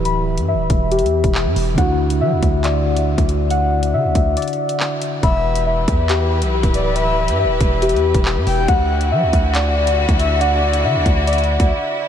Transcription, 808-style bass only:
X:1
M:4/4
L:1/16
Q:1/4=139
K:Em
V:1 name="808-style bass" clef=bass
D,,,3 G,,3/2 D,,,3/2 E,,,3 E,,2 E,,,2 G,, E,,,2 | D,,4 F, D,, D,,6- D,, D,,3- | D,,4 D, D,, D,,2 z8 | E,,,6 E,,4- E,, B,,,2 D,,,3- |
D,,,3 G,,3/2 D,,,3/2 E,,,3 E,,2 E,,,2 G,, E,,,2 | D,,4 F, D,, D,,6- D,, D,,3- | D,,4 D, D,, D,,4- D,, D,, z4 |]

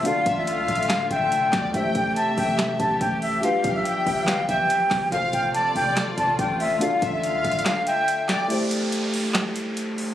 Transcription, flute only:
X:1
M:4/4
L:1/16
Q:1/4=142
K:Am
V:1 name="Flute"
f3 e4- e f2 g6 | e2 g2 a2 g2 z2 a2 g2 e2 | f3 e4- e f2 g6 | f2 g2 a2 g2 z2 a2 g2 e2 |
f3 e4- e f2 g6 | z16 |]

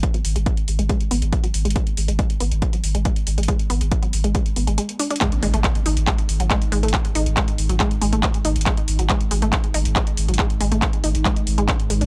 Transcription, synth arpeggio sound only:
X:1
M:4/4
L:1/16
Q:1/4=139
K:none
V:1 name="Synth arpeggio sound" clef=bass
z ^F, z ^G, G, z2 G, G, z B, z2 F, z G, | ^G, z2 G, G, z B, z2 ^F, z G, G, z2 G, | ^G, z B, z2 ^F, z G, G, z B, G, G, z D D | ^G, z G, A, z2 ^D z G, z2 ^F, G, z G, A, |
z2 ^D z ^G, z2 ^F, G, z G, A, z2 D z | ^G, z2 ^F, G, z G, A, z2 ^D z G, z2 F, | ^G, z G, A, z2 ^D z G, z2 G, =D z G, D |]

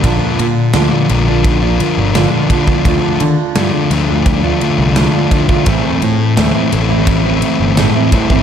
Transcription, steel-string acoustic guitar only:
X:1
M:4/4
L:1/16
Q:1/4=85
K:Dm
V:1 name="Steel-string acoustic guitar"
[B,,D,B,DF]2 [D,B,DF]2 [B,,D,B,DF] [B,DF]2 [B,DF]2 [B,DF]3 [B,,D,B,DF] [B,DF] [D,B,DF] [B,DF] | [D,A,DF]2 [D,A,DF]2 [D,A,DF] [A,DF]2 [A,DF]2 [A,DF]3 [D,A,DF] [A,DF] [D,A,DF] [A,DF] | [A,,E,A,CE]2 [E,A,CE]2 [A,,E,A,CE] [A,CE]2 [A,CE]2 [A,CE]3 [A,,E,A,CE] [A,CE] [E,A,CE] [A,CE] |]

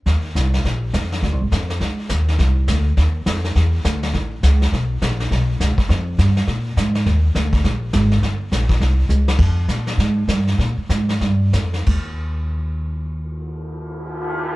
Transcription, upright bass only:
X:1
M:4/4
L:1/8
Q:"Swing" 1/4=206
K:Fdor
V:1 name="Upright bass" clef=bass
E,,2 C,,2 B,,,2 F,,2 | (3D,, C,, A,,, F,,2 _D,,2 E,,2 | C,,2 D,,2 E,,2 F,,2 | =E,,2 D,,2 =A,,,2 ^C,,2 |
=B,,,2 _B,,,2 =B,,,2 ^C,, z | F,,2 G,,2 B,,2 A,,2 | E,,2 D,,2 B,,,2 A,,,2 | G,,,2 B,,,2 C,,2 _D,,2 |
F,,2 B,,2 A,,2 G,,2 | B,, z A,,2 G,,2 F,,2 | E,,8- | E,,8 |]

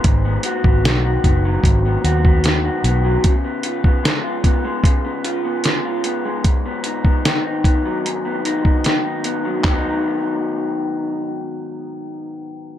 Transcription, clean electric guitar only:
X:1
M:4/4
L:1/16
Q:1/4=75
K:G#dor
V:1 name="Clean electric guitar"
G,, B, F B, D, F B, F, G,, B, F B, D, F B, F, | C, B, E B, G, E B, G, C, B, E B, G, E B, G, | G,, B, D B, D, D B, F, G,, B, D B, D, D B, F, | [G,,D,F,B,D]16 |]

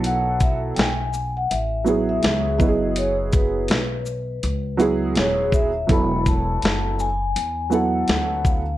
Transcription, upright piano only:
X:1
M:4/4
L:1/8
Q:"Swing 16ths" 1/4=82
K:F#dor
V:1 name="Upright piano"
[F,B,EA]2 z3 [F,B,EG]2 [F,B,EFG]- | [F,B,EFG]2 z3 [F,B,EG]2 z | [F,B,EA]3 z2 [F,B,EA]2 z |]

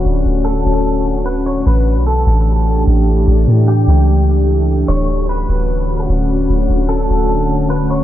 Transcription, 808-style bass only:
X:1
M:4/4
L:1/16
Q:1/4=149
K:D
V:1 name="808-style bass" clef=bass
D,,,2 D,,,4 D,,,8- D,,,2 | A,,,3 B,,,3 A,,,6 A,,,4 | A,,,2 A,,4 C,,8- C,,2 | D,,,6 D,,,6 D,,,4 |
D,,,2 D,,,4 D,,,8- D,,,2 |]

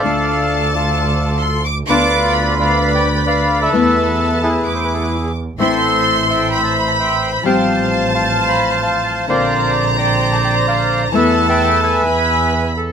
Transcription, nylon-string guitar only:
X:1
M:4/4
L:1/8
Q:1/4=130
K:Ephr
V:1 name="Nylon-string guitar"
[D,A,DF]8 | [D,B,DF]8 | [E,A,B,E]4 z4 | [E,A,CE]8 |
[F,G,CG]8 | [D,_B,CF]8 | [E,A,B,E]4 z4 |]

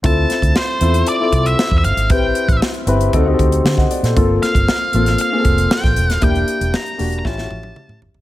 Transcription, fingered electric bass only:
X:1
M:4/4
L:1/16
Q:1/4=116
K:Dm
V:1 name="Fingered electric bass" clef=bass
D,,2 z D,, z2 E,,2 z2 C,,2 z E,, G,,, ^G,,, | A,,,2 z A,,, z2 G,,,2 D,,2 D,,2 D,2 z B,, | G,,,2 z G,,, z2 A,,,2 z2 F,,,2 z A,,, E,,, _E,,, | E,,,2 z E,,, z2 E,,,2 A,,,2 A,,,2 z A,, G,,, ^G,,, |]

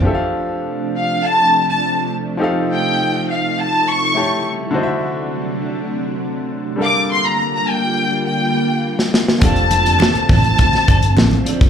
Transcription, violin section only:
X:1
M:4/4
L:1/16
Q:1/4=102
K:F
V:1 name="Violin section"
z6 f2 a3 a3 z2 | z2 g4 f2 a2 _d'4 z2 | z12 z2 d'2 | c' b2 b g4 g6 z2 |
a6 a8 z2 |]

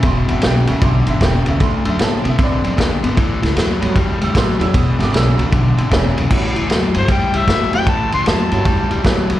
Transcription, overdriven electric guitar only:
X:1
M:4/4
L:1/8
Q:"Swing" 1/4=153
K:Amix
V:1 name="Overdriven electric guitar" clef=bass
[E,,B,,] [E,,B,,] [E,,C,] [E,,C,] [E,,D,] [E,,D,] [E,,C,] [E,,C,] | [D,A,] [D,A,] [D,B,] [D,B,] [D,=C] [D,C] [D,B,] [D,B,] | [A,,E,] [A,,E,] [A,,F,] [A,,F,] [A,,G,] [A,,G,] [A,,F,] [A,,F,] | [E,,B,,] [E,,B,,] [E,,C,] [E,,C,] [E,,D,] [E,,D,] [E,,C,] [E,,C,] |
[A,,E,] [A,,E,] [A,,F,] [A,,F,] [A,,G,] [A,,G,] [A,,F,] [A,,F,] | [A,,E,] [A,,E,] [A,,F,] [A,,F,] [A,,G,] [A,,G,] [A,,F,] [A,,F,] |]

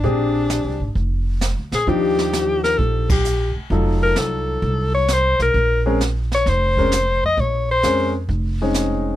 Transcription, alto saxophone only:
X:1
M:4/4
L:1/8
Q:"Swing" 1/4=131
K:Fphr
V:1 name="Alto saxophone"
=D4 z3 A | =G3 B =A G2 z | z B =A3 d c B- | B z2 d c3 e |
d c2 z4 z |]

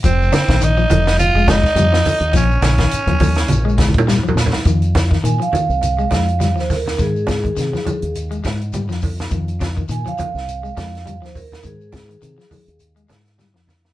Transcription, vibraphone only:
X:1
M:4/4
L:1/16
Q:"Swing 16ths" 1/4=103
K:Fm
V:1 name="Vibraphone"
z16 | z16 | z4 a f8 c B2 | A8 z8 |
z4 a f8 c B2 | A8 z8 |]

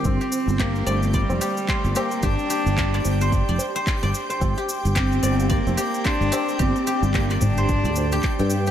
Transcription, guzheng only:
X:1
M:4/4
L:1/16
Q:"Swing 16ths" 1/4=110
K:Gm
V:1 name="Guzheng"
z G3 G2 d2 d2 G z c2 G2 | G z G z2 d z c z d z c z d z c | z G3 G2 d2 d2 G z c2 G2 | G z G z2 d z c z d z G z g z G |]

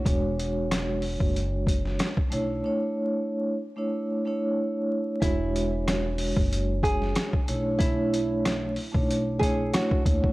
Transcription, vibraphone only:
X:1
M:4/4
L:1/16
Q:"Swing 16ths" 1/4=93
K:Emix
V:1 name="Vibraphone"
[G,DFc]12- [G,DFc] z [A,DEc]2 | [A,DEc]6 z [A,DEc]3 [A,DEc]6 | [G,DFc]12- [G,DFc] z [A,DEc]2 | [A,DEc]6 z [A,DEc]3 [A,DEc]6 |]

